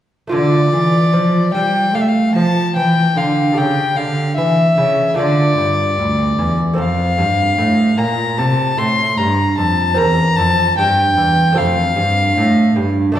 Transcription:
0.27 0.69 A3 soft
0.27 3.51 F4 soft
0.27 3.52 A4 soft
0.32 0.70 D3 medium
0.32 0.69 D3 medium
0.32 1.49 D5 medium
0.72 1.14 E3 medium
0.72 1.09 E3 medium
1.13 1.53 F3 medium
1.13 1.50 F3 medium
1.53 1.94 G3 medium
1.53 1.90 G3 medium
1.53 1.96 G5 medium
1.93 2.33 A3 medium
1.93 2.31 A3 medium
1.93 2.02 F5 medium
2.01 2.10 E5 medium
2.08 2.35 F5 medium
2.34 2.74 F3 medium
2.34 2.72 F3 soft
2.34 2.75 A5 medium
2.75 3.15 E3 medium
2.75 3.12 E3 soft
2.75 3.19 G5 medium
3.16 3.53 D3 medium
3.16 3.56 D3 medium
3.16 3.59 F5 medium
3.52 5.11 A3 soft
3.52 5.12 G4 soft
3.52 5.13 A4 soft
3.57 3.96 C#3 medium
3.57 3.93 C#3 soft
3.57 3.98 G5 medium
3.96 4.36 D3 medium
3.96 4.33 D3 soft
3.96 4.36 F5 medium
4.37 4.77 E3 medium
4.37 4.74 E3 medium
4.37 5.16 E5 medium
4.78 5.17 C#3 medium
4.78 5.14 C#3 medium
5.14 5.57 D3 medium
5.14 5.55 A3 soft
5.14 6.73 F4 soft
5.14 6.74 A4 medium
5.14 6.55 D5 medium
5.19 5.55 D3 medium
5.58 5.94 G2 soft
5.58 6.00 G2 medium
5.98 6.38 D2 medium
5.98 6.34 D2 soft
6.39 6.75 E2 medium
6.39 6.78 E2 medium
6.73 7.15 A3 soft
6.73 7.15 C4 soft
6.73 9.93 A4 soft
6.78 7.14 F2 medium
6.78 7.20 F2 medium
6.78 8.00 F5 medium
7.18 7.54 G2 medium
7.18 7.58 G2 medium
7.58 7.94 A2 medium
7.58 7.98 A2 medium
7.97 8.34 A#2 medium
7.97 8.40 A#2 medium
7.97 8.39 A#5 medium
8.38 8.74 C3 medium
8.38 8.78 C3 medium
8.38 8.79 A5 medium
8.77 9.14 A2 medium
8.77 9.18 A2 medium
8.77 9.19 C6 medium
9.18 9.57 G2 medium
9.18 9.54 G2 medium
9.18 9.57 A#5 medium
9.58 9.94 F2 medium
9.58 9.99 F2 medium
9.58 9.99 A5 medium
9.94 10.36 E2 medium
9.94 10.34 E2 medium
9.94 11.51 C4 medium
9.94 11.52 A#4 soft
9.94 10.38 A#5 medium
10.36 10.76 F2 medium
10.36 10.74 F2 medium
10.36 10.77 A5 loud
10.77 11.16 G2 medium
10.77 11.14 G2 medium
10.77 11.59 G5 medium
11.17 11.53 E2 medium
11.17 11.56 E2 medium
11.52 11.93 A3 medium
11.52 11.94 C4 medium
11.52 13.12 A4 medium
11.57 11.93 F2 medium
11.57 11.96 F2 medium
11.57 12.97 F5 medium
11.96 12.32 G2 medium
11.96 12.36 G2 medium
12.37 12.76 A2 medium
12.37 12.73 A2 medium
12.76 13.12 G2 medium
12.76 13.16 G2 medium
13.12 13.20 A3 medium
13.12 13.20 D4 medium
13.12 13.20 A4 medium
13.16 13.20 D5 loud

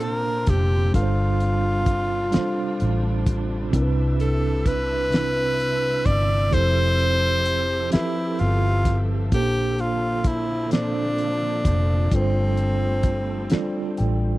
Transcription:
0.00 0.96 A#2 medium
0.00 0.91 C3 medium
0.00 0.91 A#3 medium
0.00 0.96 A#3 medium
0.00 3.69 C4 medium
0.00 0.91 D4 medium
0.00 0.93 D4 medium
0.00 0.91 F4 medium
0.00 0.51 A#4 loud
0.00 0.96 C5 medium
0.00 0.96 A5 medium
0.00 closed hi-hat medium
0.46 0.91 F1 loud
0.46 0.95 G4 medium
0.46 kick medium
0.46 closed hi-hat medium
0.92 2.31 G1 loud
0.92 6.49 C3 medium
0.92 2.14 G3 medium
0.92 6.49 G3 medium
0.92 2.15 D4 medium
0.92 6.49 D4 medium
0.92 3.70 F4 medium
0.92 2.15 F4 medium
0.92 3.23 F4 medium
0.92 2.16 A4 medium
0.92 kick medium
0.92 closed hi-hat medium
0.97 1.02 B4 medium
1.03 2.20 C5 medium
1.40 closed hi-hat medium
1.86 kick medium
1.86 closed hi-hat medium
2.31 3.53 G3 medium
2.31 3.54 D4 medium
2.31 3.55 F4 medium
2.31 3.55 A4 medium
2.31 snare loud
2.31 closed hi-hat medium
2.36 3.56 C5 medium
2.36 muted fingered electric bass stroke medium
2.80 3.70 A1 loud
2.80 closed hi-hat medium
3.26 kick medium
3.26 closed hi-hat medium
3.71 6.02 C2 loud
3.71 4.93 C3 medium
3.71 4.94 C4 medium
3.71 9.27 C4 medium
3.71 4.94 D4 medium
3.71 4.95 E4 medium
3.71 9.27 E5 medium
3.71 kick medium
3.71 closed hi-hat medium
3.76 3.81 A#4 medium
3.82 4.99 B4 loud
4.20 4.69 A4 medium
4.20 closed hi-hat medium
4.66 6.08 B4 loud
4.66 kick medium
4.66 closed hi-hat medium
5.10 6.32 C3 medium
5.10 6.33 C4 medium
5.10 6.34 D4 medium
5.10 6.34 E4 medium
5.10 closed hi-hat medium
5.14 6.35 B4 medium
5.14 snare loud
5.60 closed hi-hat medium
6.06 6.49 G1 medium
6.06 6.55 D5 loud
6.06 kick medium
6.06 closed hi-hat medium
6.50 7.88 F1 loud
6.50 7.72 F3 medium
6.50 9.29 F3 medium
6.50 7.73 C4 medium
6.50 7.73 E4 medium
6.50 9.28 G4 medium
6.50 7.74 G4 medium
6.50 12.06 A4 medium
6.50 7.74 A4 medium
6.50 7.92 C5 loud
6.50 kick loud
6.50 closed hi-hat medium
6.55 7.74 C5 medium
6.99 closed hi-hat medium
7.45 closed hi-hat medium
7.90 9.12 F3 medium
7.90 9.13 C4 medium
7.90 8.42 E4 loud
7.90 9.13 G4 medium
7.90 9.14 A4 medium
7.90 9.13 E5 medium
7.90 snare loud
7.90 closed hi-hat medium
7.95 9.15 B4 medium
7.95 muted fingered electric bass stroke soft
8.39 9.33 G1 loud
8.39 9.05 F4 loud
8.39 closed hi-hat medium
8.85 kick loud
8.85 closed hi-hat medium
9.32 11.61 A#1 loud
9.32 10.52 A#2 medium
9.32 14.38 D3 medium
9.32 14.38 F3 medium
9.32 10.53 A#3 medium
9.32 12.09 A#3 medium
9.32 12.08 C4 medium
9.32 9.39 C#4 medium
9.32 9.82 G4 loud
9.32 10.54 A4 medium
9.32 kick loud
9.32 closed hi-hat medium
9.36 10.55 C5 medium
9.40 10.57 D4 medium
9.78 10.29 F4 medium
9.78 closed hi-hat medium
10.24 10.72 E4 medium
10.24 kick medium
10.24 closed hi-hat medium
10.71 11.92 A#2 medium
10.71 11.93 A#3 medium
10.71 10.78 C4 medium
10.71 12.16 D4 loud
10.71 11.93 A4 medium
10.71 11.94 C5 medium
10.71 snare loud
10.71 closed hi-hat medium
10.79 11.96 D4 medium
11.18 closed hi-hat medium
11.65 12.08 F1 loud
11.65 kick loud
11.65 closed hi-hat medium
12.11 13.47 G1 loud
12.11 13.31 G3 medium
12.11 14.38 G3 medium
12.11 14.38 A3 medium
12.11 14.38 C4 medium
12.11 13.99 C4 medium
12.11 13.32 D4 medium
12.11 13.33 F4 medium
12.11 13.33 A4 medium
12.11 kick loud
12.11 closed hi-hat medium
12.16 12.20 B4 medium
12.22 13.37 C5 medium
12.57 closed hi-hat medium
13.03 kick medium
13.03 closed hi-hat medium
13.50 14.38 G3 medium
13.50 14.38 D4 medium
13.50 14.38 F4 medium
13.50 14.38 A4 medium
13.50 muted fingered electric bass stroke soft
13.50 snare loud
13.50 closed hi-hat medium
13.54 14.38 D5 medium
13.97 14.38 A1 loud
13.97 14.38 G5 medium
13.97 closed hi-hat medium

